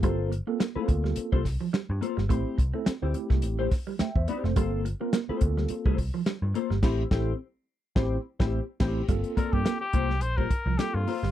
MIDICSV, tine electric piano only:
0, 0, Header, 1, 2, 480
1, 0, Start_track
1, 0, Tempo, 566572
1, 25, Time_signature, 4, 2, 24, 8
1, 9584, End_track
2, 0, Start_track
2, 0, Title_t, "Tine electric piano"
2, 0, Program_c, 0, 4
2, 0, Note_on_c, 0, 64, 52
2, 0, Note_on_c, 0, 67, 60
2, 20, Note_on_c, 0, 58, 89
2, 24, Note_on_c, 0, 60, 74
2, 26, Note_on_c, 0, 65, 79
2, 28, Note_on_c, 0, 69, 97
2, 149, Note_off_c, 0, 67, 0
2, 152, Note_off_c, 0, 64, 0
2, 242, Note_off_c, 0, 58, 0
2, 243, Note_off_c, 0, 60, 0
2, 245, Note_off_c, 0, 65, 0
2, 246, Note_off_c, 0, 69, 0
2, 397, Note_on_c, 0, 58, 81
2, 401, Note_on_c, 0, 60, 76
2, 405, Note_on_c, 0, 65, 67
2, 407, Note_on_c, 0, 69, 86
2, 531, Note_off_c, 0, 58, 0
2, 533, Note_off_c, 0, 60, 0
2, 535, Note_off_c, 0, 65, 0
2, 536, Note_off_c, 0, 69, 0
2, 639, Note_on_c, 0, 57, 70
2, 640, Note_on_c, 0, 60, 73
2, 644, Note_on_c, 0, 65, 80
2, 646, Note_on_c, 0, 69, 91
2, 688, Note_off_c, 0, 57, 0
2, 693, Note_on_c, 0, 58, 85
2, 1204, Note_off_c, 0, 60, 0
2, 1206, Note_off_c, 0, 65, 0
2, 1207, Note_off_c, 0, 69, 0
2, 1231, Note_off_c, 0, 58, 0
2, 1947, Note_on_c, 0, 57, 83
2, 1948, Note_on_c, 0, 60, 83
2, 1953, Note_on_c, 0, 64, 78
2, 1955, Note_on_c, 0, 67, 88
2, 2165, Note_off_c, 0, 57, 0
2, 2166, Note_off_c, 0, 60, 0
2, 2168, Note_off_c, 0, 64, 0
2, 2169, Note_off_c, 0, 67, 0
2, 2321, Note_on_c, 0, 57, 89
2, 2322, Note_on_c, 0, 60, 80
2, 2326, Note_on_c, 0, 64, 78
2, 2329, Note_on_c, 0, 69, 93
2, 2453, Note_off_c, 0, 57, 0
2, 2454, Note_off_c, 0, 60, 0
2, 2456, Note_off_c, 0, 64, 0
2, 2457, Note_off_c, 0, 69, 0
2, 2558, Note_on_c, 0, 57, 84
2, 2562, Note_on_c, 0, 60, 75
2, 2564, Note_on_c, 0, 64, 86
2, 2567, Note_on_c, 0, 67, 91
2, 3123, Note_off_c, 0, 57, 0
2, 3125, Note_off_c, 0, 60, 0
2, 3126, Note_off_c, 0, 64, 0
2, 3128, Note_off_c, 0, 67, 0
2, 3391, Note_on_c, 0, 79, 61
2, 3394, Note_on_c, 0, 76, 50
2, 3513, Note_off_c, 0, 76, 0
2, 3516, Note_off_c, 0, 79, 0
2, 3523, Note_on_c, 0, 76, 63
2, 3528, Note_on_c, 0, 72, 63
2, 3622, Note_off_c, 0, 76, 0
2, 3625, Note_off_c, 0, 72, 0
2, 3628, Note_on_c, 0, 74, 83
2, 3755, Note_off_c, 0, 74, 0
2, 3761, Note_on_c, 0, 72, 69
2, 3768, Note_on_c, 0, 69, 55
2, 3861, Note_off_c, 0, 69, 0
2, 3863, Note_on_c, 0, 58, 85
2, 3865, Note_on_c, 0, 60, 83
2, 3868, Note_on_c, 0, 65, 77
2, 3871, Note_on_c, 0, 69, 94
2, 3988, Note_off_c, 0, 72, 0
2, 4083, Note_off_c, 0, 58, 0
2, 4084, Note_off_c, 0, 60, 0
2, 4086, Note_off_c, 0, 65, 0
2, 4087, Note_off_c, 0, 69, 0
2, 4239, Note_on_c, 0, 58, 83
2, 4241, Note_on_c, 0, 60, 72
2, 4245, Note_on_c, 0, 65, 77
2, 4248, Note_on_c, 0, 70, 89
2, 4372, Note_off_c, 0, 58, 0
2, 4373, Note_off_c, 0, 60, 0
2, 4375, Note_off_c, 0, 65, 0
2, 4376, Note_off_c, 0, 70, 0
2, 4478, Note_on_c, 0, 58, 82
2, 4481, Note_on_c, 0, 60, 74
2, 4486, Note_on_c, 0, 65, 76
2, 4488, Note_on_c, 0, 69, 97
2, 5043, Note_off_c, 0, 58, 0
2, 5044, Note_off_c, 0, 60, 0
2, 5046, Note_off_c, 0, 65, 0
2, 5048, Note_off_c, 0, 69, 0
2, 5782, Note_on_c, 0, 57, 96
2, 5786, Note_on_c, 0, 60, 95
2, 5788, Note_on_c, 0, 64, 104
2, 5791, Note_on_c, 0, 67, 103
2, 5951, Note_off_c, 0, 57, 0
2, 5953, Note_off_c, 0, 60, 0
2, 5955, Note_off_c, 0, 64, 0
2, 5956, Note_off_c, 0, 67, 0
2, 6021, Note_on_c, 0, 57, 81
2, 6026, Note_on_c, 0, 60, 95
2, 6028, Note_on_c, 0, 64, 89
2, 6031, Note_on_c, 0, 69, 87
2, 6191, Note_off_c, 0, 57, 0
2, 6193, Note_off_c, 0, 60, 0
2, 6195, Note_off_c, 0, 64, 0
2, 6196, Note_off_c, 0, 69, 0
2, 6739, Note_on_c, 0, 57, 95
2, 6741, Note_on_c, 0, 60, 101
2, 6745, Note_on_c, 0, 64, 91
2, 6802, Note_on_c, 0, 67, 103
2, 6909, Note_off_c, 0, 57, 0
2, 6910, Note_off_c, 0, 60, 0
2, 6913, Note_off_c, 0, 64, 0
2, 6945, Note_off_c, 0, 67, 0
2, 7115, Note_on_c, 0, 57, 94
2, 7118, Note_on_c, 0, 60, 96
2, 7121, Note_on_c, 0, 64, 92
2, 7178, Note_on_c, 0, 67, 85
2, 7274, Note_off_c, 0, 57, 0
2, 7276, Note_off_c, 0, 60, 0
2, 7278, Note_off_c, 0, 64, 0
2, 7311, Note_off_c, 0, 67, 0
2, 7458, Note_on_c, 0, 57, 115
2, 7461, Note_on_c, 0, 60, 107
2, 7465, Note_on_c, 0, 64, 118
2, 7523, Note_on_c, 0, 67, 107
2, 7628, Note_off_c, 0, 57, 0
2, 7630, Note_off_c, 0, 60, 0
2, 7632, Note_off_c, 0, 64, 0
2, 7665, Note_off_c, 0, 67, 0
2, 7695, Note_on_c, 0, 58, 78
2, 7698, Note_on_c, 0, 60, 83
2, 7702, Note_on_c, 0, 65, 80
2, 7704, Note_on_c, 0, 69, 100
2, 8285, Note_off_c, 0, 58, 0
2, 8286, Note_off_c, 0, 60, 0
2, 8288, Note_off_c, 0, 65, 0
2, 8290, Note_off_c, 0, 69, 0
2, 9132, Note_on_c, 0, 58, 65
2, 9136, Note_on_c, 0, 60, 58
2, 9137, Note_on_c, 0, 65, 70
2, 9141, Note_on_c, 0, 69, 71
2, 9430, Note_off_c, 0, 58, 0
2, 9432, Note_off_c, 0, 60, 0
2, 9432, Note_off_c, 0, 65, 0
2, 9434, Note_off_c, 0, 69, 0
2, 9584, End_track
0, 0, End_of_file